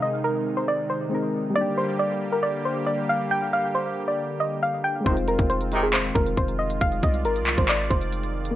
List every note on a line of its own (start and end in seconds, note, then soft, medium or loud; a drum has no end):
0.00 1.52 C3 medium
0.00 1.52 D#3 medium
0.00 1.05 G#3 medium
0.00 1.52 G#3 medium
0.00 1.07 C4 medium
0.00 1.09 D#4 medium
0.00 1.52 D#4 medium
0.00 1.11 G#4 medium
0.00 0.23 D#5 medium
0.24 0.55 A#4 medium
0.57 0.67 C5 medium
0.68 0.88 D5 medium
0.90 1.52 C5 medium
1.09 1.54 G#3 medium
1.09 1.55 C4 medium
1.09 1.56 D#4 soft
1.15 1.57 A#4 medium
1.50 4.99 G3 medium
1.50 5.01 A#3 medium
1.56 5.02 D3 medium
1.56 5.02 G3 medium
1.56 5.02 A#3 medium
1.56 5.03 D4 medium
1.56 5.02 G4 medium
1.56 1.76 D5 loud
1.61 5.05 G4 medium
1.78 1.98 C5 medium
1.99 2.30 D5 medium
2.32 2.43 A#4 medium
2.43 2.63 D5 medium
2.65 2.86 C5 medium
2.87 3.07 D5 medium
3.09 3.30 F5 medium
3.31 3.51 G5 loud
3.53 3.73 F5 medium
3.75 4.06 C5 medium
4.08 4.39 D5 medium
4.40 4.61 D#5 medium
4.63 4.83 F5 medium
4.84 5.04 G5 medium
5.01 8.50 G#3 medium
5.01 8.51 C4 medium
5.06 5.38 F1 loud
5.06 5.15 G#2 medium
5.06 5.15 C3 medium
5.06 5.15 D#3 loud
5.06 8.55 D#3 medium
5.06 8.53 G#3 medium
5.06 6.80 C4 medium
5.06 8.53 D#4 medium
5.06 8.53 F4 medium
5.06 5.27 C5 loud
5.06 kick loud
5.06 closed hi-hat medium
5.11 8.55 F4 medium
5.17 closed hi-hat medium
5.28 5.48 A#4 medium
5.28 closed hi-hat medium
5.39 6.12 F1 loud
5.39 kick loud
5.39 closed hi-hat medium
5.50 5.81 C5 medium
5.50 closed hi-hat medium
5.61 closed hi-hat medium
5.72 5.86 G#2 loud
5.72 5.86 C3 loud
5.72 5.86 D#3 loud
5.72 closed hi-hat medium
5.83 5.93 G#4 medium
5.93 6.14 C5 medium
5.93 clap loud
5.93 closed hi-hat medium
6.05 closed hi-hat soft
6.15 6.36 F1 loud
6.15 6.36 A#4 medium
6.15 kick loud
6.15 closed hi-hat medium
6.27 closed hi-hat medium
6.37 6.79 F1 loud
6.37 6.58 C5 medium
6.37 kick loud
6.37 closed hi-hat medium
6.48 closed hi-hat medium
6.59 6.79 D#5 medium
6.70 closed hi-hat medium
6.81 7.02 F1 loud
6.81 8.55 D5 medium
6.81 7.02 F5 loud
6.81 kick loud
6.81 closed hi-hat medium
6.92 closed hi-hat medium
7.03 7.26 C2 loud
7.03 7.24 D#5 medium
7.03 kick medium
7.03 closed hi-hat medium
7.14 closed hi-hat medium
7.25 7.43 G#1 loud
7.25 7.56 A#4 medium
7.25 closed hi-hat medium
7.36 closed hi-hat medium
7.41 7.57 C2 loud
7.47 clap medium
7.47 open hi-hat medium
7.58 7.89 G#1 loud
7.58 7.68 C5 medium
7.58 kick loud
7.69 7.89 D5 medium
7.69 clap loud
7.69 closed hi-hat medium
7.80 closed hi-hat soft
7.90 8.54 F1 loud
7.90 8.52 C5 medium
7.90 kick medium
7.90 closed hi-hat medium
8.02 closed hi-hat medium
8.13 closed hi-hat medium
8.24 closed hi-hat medium
8.45 closed hi-hat medium
8.51 8.55 A#3 medium